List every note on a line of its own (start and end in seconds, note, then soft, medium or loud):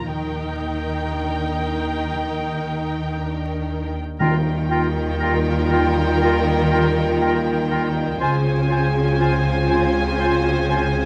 0.00 0.11 A#2 soft
0.00 0.11 F3 soft
0.00 0.11 C4 soft
0.00 1.60 A#4 soft
0.06 3.95 D#2 medium
0.06 2.12 D#3 medium
0.06 3.96 D#3 medium
0.06 4.00 D#4 soft
0.06 3.96 A#4 medium
0.06 3.99 G5 medium
0.59 2.63 A#3 soft
1.11 3.15 D4 soft
2.13 4.20 D#3 soft
2.65 6.21 A#3 soft
3.17 4.24 D4 soft
3.69 7.59 A#4 soft
4.19 8.18 D#2 medium
4.19 8.17 D#3 medium
4.19 5.68 D#3 medium
4.19 8.11 D#3 medium
4.19 8.18 G3 medium
4.19 8.18 F4 medium
4.19 4.37 F4 medium
4.19 8.18 F4 medium
4.19 4.35 A#4 medium
4.19 8.18 A#4 medium
4.19 4.32 G5 medium
4.19 8.18 G5 medium
4.47 6.47 D#4 medium
4.70 4.88 F4 medium
4.70 6.71 G4 medium
4.70 4.86 A#4 medium
4.70 4.82 G5 medium
4.96 5.97 D#5 medium
5.20 5.39 F4 medium
5.20 5.36 A#4 medium
5.20 5.72 F5 medium
5.20 5.34 G5 medium
5.47 7.45 G5 medium
5.70 5.89 F4 medium
5.70 5.86 A#4 medium
5.70 7.20 F5 medium
5.70 5.83 G5 medium
5.98 6.96 D#5 medium
6.21 8.25 A#3 soft
6.21 6.40 F4 medium
6.21 6.37 A#4 medium
6.21 6.32 G5 medium
6.49 8.26 D#4 medium
6.70 6.89 F4 medium
6.70 8.25 G4 medium
6.70 6.86 A#4 medium
6.70 6.83 G5 medium
6.98 7.95 D#5 medium
7.21 7.39 F4 medium
7.21 7.37 A#4 medium
7.21 7.70 F5 medium
7.21 7.33 G5 medium
7.46 8.25 G5 medium
7.71 7.89 F4 medium
7.71 7.87 A#4 medium
7.71 9.17 F5 medium
7.71 7.83 G5 medium
7.96 8.25 D#5 medium
8.20 11.05 C#2 medium
8.20 11.05 C#3 medium
8.20 11.05 C4 medium
8.20 11.05 F4 medium
8.20 8.37 F4 medium
8.20 11.05 F4 medium
8.20 8.36 C5 medium
8.20 11.05 C5 medium
8.20 11.05 G#5 medium
8.20 8.34 G#5 medium
8.45 10.43 C4 soft
8.70 8.86 F4 medium
8.70 10.68 G#4 medium
8.70 8.87 C5 medium
8.70 8.83 G#5 medium
8.94 9.94 C5 medium
9.19 9.36 F4 medium
9.19 9.35 C5 medium
9.19 9.68 F5 medium
9.19 9.33 G#5 medium
9.44 11.05 G#5 medium
9.70 9.86 F4 soft
9.70 9.86 C5 medium
9.70 11.05 F5 medium
9.70 9.82 G#5 medium
10.20 11.05 G#3 medium
10.20 10.36 F4 medium
10.20 10.36 C5 medium
10.20 10.31 G#5 medium
10.44 11.05 C4 medium
10.69 10.87 F4 medium
10.69 11.05 G#4 medium
10.69 10.86 C5 medium
10.69 10.82 G#5 medium
10.94 11.05 C5 medium